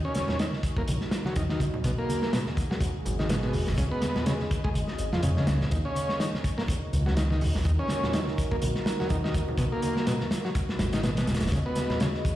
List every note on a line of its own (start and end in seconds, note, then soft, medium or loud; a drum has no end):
0.00 1.80 D#4 medium
0.00 3.74 F#4 medium
0.00 5.67 G#4 medium
0.05 0.38 C#4 loud
0.15 snare medium
0.15 closed hi-hat medium
0.15 high conga medium
0.28 snare medium
0.28 low conga medium
0.39 0.46 D#3 medium
0.39 snare loud
0.39 closed hi-hat medium
0.53 snare soft
0.53 high conga medium
0.63 kick loud
0.63 closed hi-hat medium
0.77 0.82 A#3 loud
0.77 kick medium
0.88 0.97 A#1 loud
0.88 closed hi-hat medium
0.88 high conga loud
1.01 snare soft
1.11 snare loud
1.11 closed hi-hat medium
1.25 1.34 F#3 loud
1.25 snare soft
1.25 high conga medium
1.36 1.43 D#3 loud
1.36 kick medium
1.36 closed hi-hat medium
1.36 low conga medium
1.49 1.60 D#3 loud
1.49 snare soft
1.60 kick loud
1.60 closed hi-hat medium
1.60 high conga loud
1.74 low conga loud
1.84 1.94 B1 loud
1.84 1.91 B2 medium
1.84 3.76 G#3 medium
1.84 5.68 D#5 medium
1.84 kick medium
1.84 closed hi-hat medium
1.98 2.32 A#3 loud
2.09 closed hi-hat medium
2.09 high conga medium
2.22 snare soft
2.33 2.39 B2 medium
2.33 snare loud
2.33 closed hi-hat medium
2.46 snare soft
2.46 high conga medium
2.57 kick loud
2.57 closed hi-hat medium
2.71 2.76 F#3 loud
2.71 snare medium
2.81 kick loud
2.81 closed hi-hat medium
2.81 high conga medium
3.05 3.61 G#1 medium
3.05 closed hi-hat medium
3.05 low conga medium
3.19 3.27 D#3 loud
3.19 snare soft
3.19 high conga medium
3.29 3.36 B2 loud
3.29 snare loud
3.29 closed hi-hat medium
3.42 3.53 B2 medium
3.42 snare soft
3.53 open hi-hat medium
3.53 high conga medium
3.53 low conga medium
3.67 3.75 F#1 medium
3.67 snare soft
3.67 low conga medium
3.78 3.87 C#2 loud
3.78 3.84 C#3 medium
3.78 5.70 C#4 medium
3.78 5.70 F5 medium
3.78 kick loud
3.78 closed hi-hat medium
3.91 4.25 B3 loud
4.02 snare medium
4.02 closed hi-hat medium
4.02 high conga medium
4.16 snare medium
4.16 low conga medium
4.26 4.33 C#3 medium
4.26 snare loud
4.26 closed hi-hat medium
4.40 snare soft
4.40 high conga medium
4.51 kick medium
4.51 closed hi-hat medium
4.64 4.69 G#3 loud
4.64 kick loud
4.74 4.84 G#1 medium
4.74 closed hi-hat medium
4.74 high conga loud
4.88 snare soft
4.98 5.12 G#1 medium
4.98 closed hi-hat medium
5.13 5.21 F2 soft
5.13 5.21 F3 loud
5.13 snare soft
5.13 high conga medium
5.23 5.41 F2 medium
5.23 5.30 C#3 loud
5.23 closed hi-hat medium
5.23 low conga loud
5.37 5.47 C#3 medium
5.37 snare soft
5.47 5.65 C#2 medium
5.47 snare loud
5.47 closed hi-hat medium
5.47 high conga medium
5.61 snare medium
5.61 low conga medium
5.71 5.81 D#2 loud
5.71 5.78 D#3 medium
5.71 9.55 D#4 medium
5.71 11.48 F#4 medium
5.71 9.55 A#4 medium
5.71 kick loud
5.71 closed hi-hat medium
5.85 6.19 C#4 loud
5.95 closed hi-hat medium
5.95 high conga medium
6.09 snare soft
6.20 6.26 D#3 loud
6.20 snare loud
6.20 closed hi-hat loud
6.33 snare soft
6.33 high conga medium
6.44 kick medium
6.44 closed hi-hat medium
6.58 6.63 A#3 loud
6.58 snare medium
6.68 kick loud
6.68 closed hi-hat medium
6.68 high conga medium
6.93 7.48 C#2 loud
6.93 closed hi-hat medium
6.93 low conga medium
7.06 7.14 F#3 loud
7.06 snare soft
7.06 high conga medium
7.17 7.23 D#3 loud
7.17 snare loud
7.17 closed hi-hat medium
7.30 7.40 D#3 loud
7.30 snare soft
7.41 open hi-hat medium
7.41 high conga loud
7.41 low conga medium
7.55 7.62 A#1 medium
7.55 snare soft
7.55 low conga medium
7.65 7.75 D#2 medium
7.65 7.72 D#3 medium
7.65 kick loud
7.65 closed hi-hat medium
7.79 8.13 C#4 loud
7.88 snare medium
7.88 closed hi-hat medium
7.88 high conga medium
8.03 snare medium
8.03 low conga medium
8.13 8.20 D#3 loud
8.13 snare loud
8.13 closed hi-hat medium
8.28 snare soft
8.28 high conga medium
8.38 kick loud
8.38 closed hi-hat medium
8.51 8.56 A#3 loud
8.51 kick medium
8.62 8.71 A#1 loud
8.62 closed hi-hat loud
8.62 high conga loud
8.75 snare soft
8.86 snare loud
8.86 closed hi-hat medium
9.00 9.08 F#3 loud
9.00 snare soft
9.00 high conga medium
9.09 9.17 D#3 loud
9.09 kick medium
9.09 closed hi-hat medium
9.09 low conga medium
9.24 9.34 D#3 loud
9.24 snare soft
9.34 kick medium
9.34 closed hi-hat medium
9.34 high conga medium
9.48 low conga medium
9.58 9.68 B1 loud
9.58 9.65 B2 medium
9.58 11.50 G#3 medium
9.58 12.36 G#4 medium
9.58 12.36 D#5 medium
9.58 kick loud
9.58 closed hi-hat medium
9.72 10.06 A#3 loud
9.82 closed hi-hat medium
9.82 high conga medium
9.97 snare soft
10.07 10.14 B2 loud
10.07 snare loud
10.07 closed hi-hat medium
10.20 snare soft
10.20 high conga medium
10.31 snare loud
10.31 closed hi-hat medium
10.45 10.50 F#3 loud
10.45 snare soft
10.55 kick medium
10.55 closed hi-hat medium
10.55 high conga medium
10.69 snare medium
10.79 11.35 G#1 medium
10.79 snare loud
10.79 closed hi-hat medium
10.79 low conga medium
10.93 11.01 D#3 loud
10.93 snare loud
10.93 closed hi-hat medium
10.93 high conga medium
11.03 11.10 B2 loud
11.03 snare loud
11.03 closed hi-hat medium
11.17 11.28 B2 medium
11.17 snare medium
11.17 closed hi-hat medium
11.27 snare medium
11.27 closed hi-hat medium
11.27 high conga medium
11.27 low conga medium
11.34 snare medium
11.34 closed hi-hat medium
11.40 11.49 F#1 medium
11.40 snare medium
11.40 closed hi-hat medium
11.40 low conga medium
11.47 snare medium
11.47 closed hi-hat medium
11.52 11.62 C#2 loud
11.52 11.59 C#3 medium
11.52 12.36 C#4 medium
11.52 12.36 F5 medium
11.52 kick loud
11.52 closed hi-hat medium
11.66 12.00 B3 loud
11.75 snare soft
11.75 closed hi-hat medium
11.75 high conga medium
11.90 snare medium
11.90 low conga loud
12.00 12.07 C#3 medium
12.00 snare loud
12.00 closed hi-hat medium
12.14 snare soft
12.14 high conga medium
12.25 kick loud
12.25 closed hi-hat medium